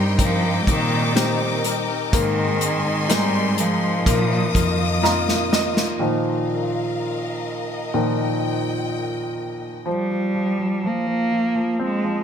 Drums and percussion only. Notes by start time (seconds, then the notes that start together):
0.19 kick, closed hi-hat
0.67 kick, closed hi-hat
1.17 snare, closed hi-hat
1.64 closed hi-hat
2.13 kick, closed hi-hat
2.61 closed hi-hat
3.10 snare, closed hi-hat
3.58 closed hi-hat
4.06 kick, closed hi-hat
4.55 kick, closed hi-hat
5.05 snare
5.29 snare
5.53 snare
5.77 snare